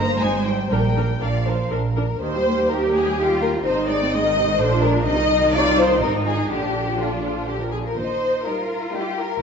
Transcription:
0.00 0.15 G1 medium
0.00 0.20 A#3 medium
0.00 0.71 C5 medium
0.00 0.20 A#5 medium
0.20 0.65 G#1 medium
0.20 0.46 G#3 medium
0.20 0.29 D#4 soft
0.20 0.29 C5 medium
0.20 0.46 G#5 medium
0.45 0.69 G3 medium
0.45 0.53 D#4 soft
0.45 0.53 C5 soft
0.45 0.70 G5 medium
0.70 1.16 A#1 medium
0.70 1.20 G3 medium
0.70 0.80 D4 medium
0.70 1.17 A#4 medium
0.70 0.80 A#4 medium
0.70 1.21 G5 medium
0.96 1.04 D4 soft
0.96 1.04 A#4 soft
1.21 1.66 A#1 medium
1.21 1.71 F3 soft
1.21 1.29 D4 soft
1.21 1.30 A#4 soft
1.21 1.45 D5 medium
1.21 1.72 F5 medium
1.46 1.54 D4 soft
1.46 1.55 A#4 soft
1.46 1.72 C5 medium
1.71 2.16 A#1 medium
1.71 1.79 D4 soft
1.71 2.21 A#4 medium
1.71 1.79 A#4 soft
1.96 2.04 D4 soft
1.96 2.04 A#4 soft
2.21 3.61 D#2 medium
2.21 2.33 D#3 medium
2.21 3.61 G4 medium
2.21 2.67 C5 medium
2.21 2.68 C5 medium
2.34 2.46 G3 soft
2.46 2.58 A#3 soft
2.57 2.70 G3 soft
2.70 2.82 D#3 soft
2.70 3.14 G4 medium
2.70 2.94 A#4 medium
2.81 2.93 G3 soft
2.93 3.06 A#3 soft
2.93 3.01 G#4 medium
2.93 3.17 G#4 medium
3.06 3.18 G3 soft
3.17 3.30 D#3 soft
3.17 3.65 F4 medium
3.17 3.41 G4 medium
3.17 3.42 G4 medium
3.29 3.41 G3 soft
3.41 3.53 A#3 soft
3.41 3.49 A#4 medium
3.41 3.65 A#4 medium
3.53 3.65 G3 soft
3.64 4.58 G#1 medium
3.64 3.76 C3 medium
3.64 4.58 D#4 medium
3.64 4.12 D#4 medium
3.64 3.88 C5 medium
3.64 3.90 C5 medium
3.76 3.89 D#3 soft
3.88 4.01 G#3 medium
3.88 4.12 D5 medium
3.88 4.13 D5 medium
4.02 4.14 C4 medium
4.13 4.25 G#3 medium
4.13 4.61 C4 soft
4.13 4.60 D#5 medium
4.13 4.59 D#5 medium
4.25 4.37 D#3 soft
4.36 4.48 C3 soft
4.49 4.60 D#3 medium
4.59 5.07 A#1 medium
4.59 4.71 D3 medium
4.59 5.07 D4 medium
4.59 5.06 D4 medium
4.59 4.83 C5 medium
4.72 4.84 F3 medium
4.83 4.95 G#3 medium
4.83 5.07 A#4 medium
4.83 4.92 A#4 medium
4.95 5.07 F3 medium
5.06 6.01 C2 medium
5.06 5.18 C3 medium
5.06 6.47 D#4 medium
5.06 5.54 D#4 medium
5.06 5.52 D#5 medium
5.06 5.53 D#5 medium
5.18 5.30 D#3 medium
5.29 5.41 G3 medium
5.41 5.53 D#3 medium
5.53 5.65 C3 medium
5.53 6.02 F4 medium
5.53 5.77 D5 medium
5.53 5.63 D5 medium
5.65 5.77 D#3 medium
5.76 5.89 G3 soft
5.76 6.01 C5 medium
5.76 6.02 C5 medium
5.89 6.01 D#3 soft
6.00 6.50 G#1 medium
6.00 6.12 C3 medium
6.00 6.49 D#4 medium
6.00 6.26 A#4 medium
6.00 6.10 A#4 medium
6.12 6.25 D#3 medium
6.24 6.37 F3 soft
6.24 6.50 G#4 medium
6.36 6.49 D#3 soft
6.49 7.75 A#1 soft
6.49 6.61 D3 medium
6.49 7.77 D4 medium
6.49 7.73 D4 soft
6.49 6.99 G4 medium
6.49 6.98 G4 medium
6.62 6.75 F3 soft
6.74 6.87 D3 soft
6.86 6.99 F3 soft
6.98 7.11 D3 soft
6.98 7.47 F4 soft
6.98 7.48 F4 medium
7.11 7.23 F3 soft
7.23 7.36 D3 soft
7.36 7.48 F3 soft
7.48 7.60 D3 soft
7.48 7.53 G4 soft
7.48 7.61 G4 soft
7.59 7.72 F3 soft
7.59 7.65 A#4 soft
7.59 7.74 A#4 medium
7.72 7.85 D3 soft
7.72 7.84 G#4 soft
7.72 7.77 G#4 medium
7.84 7.97 F3 soft
7.84 7.97 A#4 soft
7.84 7.98 A#4 medium
7.96 8.36 D#2 soft
7.96 8.43 D#4 soft
7.96 8.46 C5 medium
8.45 8.82 G3 soft
8.45 8.82 D#4 soft
8.45 9.42 F4 soft
8.45 8.93 A#4 medium
8.45 8.94 A#4 soft
8.93 9.29 G3 soft
8.93 9.29 D#4 soft
8.93 9.18 G4 medium
8.93 9.17 G4 medium
9.17 9.41 A#4 medium
9.17 9.26 A#4 medium

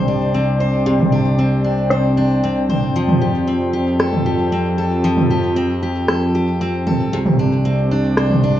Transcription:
0.00 2.92 C2 medium
0.00 0.85 C3 medium
0.00 2.95 C3 medium
0.00 0.34 C4 medium
0.00 8.60 C4 medium
0.00 0.60 C5 medium
0.00 4.62 D5 medium
0.00 8.60 G5 medium
0.08 1.11 D4 medium
0.21 cabasa medium
0.34 1.38 C4 medium
0.60 1.90 C5 medium
0.73 cabasa medium
0.86 2.95 C3 medium
0.86 cabasa soft
0.99 mid tom medium
1.12 1.63 D4 medium
1.26 cabasa medium
1.39 2.43 C4 medium
1.39 cabasa soft
1.64 2.16 D4 medium
1.78 cabasa medium
1.90 2.69 C5 medium
1.90 cross-stick medium
1.90 cabasa soft
2.04 cabasa soft
2.17 3.01 D4 medium
2.30 cabasa medium
2.43 3.47 C4 medium
2.43 cabasa medium
2.56 cabasa soft
2.69 3.99 C5 medium
2.69 mid tom soft
2.83 cabasa medium
2.95 7.10 F2 medium
2.95 7.13 F3 medium
2.95 5.03 F3 medium
2.95 cabasa soft
3.08 mid tom medium
3.08 cabasa soft
3.21 3.73 G4 soft
3.35 cabasa medium
3.41 8.43 A4 medium
3.47 4.52 C4 medium
3.47 cabasa soft
3.61 cabasa soft
3.73 4.25 G4 soft
3.87 cabasa medium
4.00 4.77 A4 medium
4.00 cross-stick medium
4.00 cabasa soft
4.13 mid tom soft
4.26 5.30 G4 medium
4.39 cabasa medium
4.52 5.56 C4 medium
4.52 cabasa soft
4.66 cabasa soft
4.78 6.07 A4 medium
4.91 cabasa medium
5.04 7.13 F3 medium
5.17 mid tom medium
5.17 cabasa soft
5.30 5.82 G4 medium
5.44 cabasa medium
5.56 6.61 C4 medium
5.70 cabasa soft
5.83 6.34 G4 soft
5.96 cabasa medium
6.08 6.86 A4 medium
6.08 cross-stick medium
6.08 cabasa soft
6.22 cabasa soft
6.35 7.39 G4 soft
6.48 cabasa medium
6.61 7.42 C4 medium
6.61 cabasa soft
6.74 cabasa soft
6.87 7.18 A4 medium
6.87 mid tom soft
7.00 cabasa medium
7.11 8.60 C2 medium
7.11 8.60 C3 medium
7.11 cabasa soft
7.26 mid tom medium
7.26 cabasa soft
7.39 7.90 D4 medium
7.49 8.60 D5 medium
7.65 8.60 C4 medium
7.65 cabasa soft
7.79 cabasa soft
7.91 8.42 D4 medium
8.04 cabasa medium
8.17 8.60 C5 medium
8.17 cross-stick medium
8.17 cabasa soft
8.30 mid tom medium
8.30 cabasa soft
8.43 8.60 D4 medium
8.56 cabasa medium

